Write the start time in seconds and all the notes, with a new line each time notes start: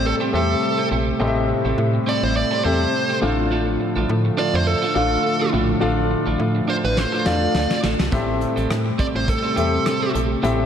Already playing: A1 A2 C3 G3 A3 C4 G4 A4 E5
0.05 A4, muted clean electric guitar stroke
0.20 C4 G4 A4
0.33 E2 C4 G4 A4 E5
0.49 muted clean electric guitar stroke
0.62 muted clean electric guitar stroke
0.78 C4 G4 A4
0.91 A#1 C4 G4 A4
1.07 muted clean electric guitar stroke
1.19 A1 A2 C4 G4 A4 D#5
1.27 E5
1.36 muted clean electric guitar stroke
1.49 muted clean electric guitar stroke
1.65 A1 C4 G4 A4
1.78 A2, muted clean electric guitar stroke
1.94 muted clean electric guitar stroke
2.06 C4 G4 A4 D5
2.23 A1 C5, muted clean electric guitar stroke
2.36 D5, muted clean electric guitar stroke
2.51 C4 G4 A4
2.64 E2 C4 G4 A4 C5 E5
2.80 muted clean electric guitar stroke
2.93 muted clean electric guitar stroke
3.09 C4 G4 A4
3.21 A1 A2 D3 F3 D4 F4 A4 F5
3.38 muted clean electric guitar stroke
3.51 D4 F4 A4
3.67 muted clean electric guitar stroke
3.80 muted clean electric guitar stroke
3.96 A1 D4 F4 A4
4.09 A2, muted clean electric guitar stroke
4.25 muted clean electric guitar stroke
4.37 D4 F4 A4 D5
4.54 F2 C5, muted clean electric guitar stroke
4.67 A4, muted clean electric guitar stroke
4.82 D4 F4 A4
4.95 A1 D4 F4 A4 F5
5.11 muted clean electric guitar stroke
5.24 muted clean electric guitar stroke
5.39 D4 F4 A4
5.52 A#1 A2 D4 F4 A4
5.68 muted clean electric guitar stroke
5.80 A1 D4 F4 A4 F5
5.97 muted clean electric guitar stroke
6.10 muted clean electric guitar stroke
6.26 A1 D4 F4 A4
6.38 A2, muted clean electric guitar stroke
6.55 muted clean electric guitar stroke
6.68 D4 F4 A4 C5
6.84 A1 B4, muted clean electric guitar stroke
6.97 C5, muted clean electric guitar stroke, snare
7.12 D4 F4 A4
7.25 E2 D4 F4 A4 D5 F5, snare
7.41 muted clean electric guitar stroke
7.55 D2, snare
7.70 muted clean electric guitar stroke, snare
7.83 A1 D4 F4 A4, snare
7.99 C2, muted clean electric guitar stroke, snare
8.12 A1 A2 C3 G3 C4 G4 A4 E5, kick, closed hi-hat
8.27 muted clean electric guitar stroke
8.41 muted clean electric guitar stroke, closed hi-hat
8.56 A1 C4 G4 A4, closed hi-hat
8.69 A2, muted clean electric guitar stroke, cross-stick, closed hi-hat
8.85 muted clean electric guitar stroke
8.98 C4 G4 A4 D5, kick, closed hi-hat
9.15 A1 C5, muted clean electric guitar stroke
9.27 A4, muted clean electric guitar stroke, kick, closed hi-hat
9.43 C4 G4 A4
9.56 E2 C4 G4 A4 E5, closed hi-hat
9.72 muted clean electric guitar stroke
9.85 muted clean electric guitar stroke, cross-stick, closed hi-hat
10.00 C4 G4 A4
10.13 A#1 C4 G4 A4, closed hi-hat
10.29 muted clean electric guitar stroke
10.42 A1 A2 C4 G4 A4 E5, closed hi-hat
10.58 muted clean electric guitar stroke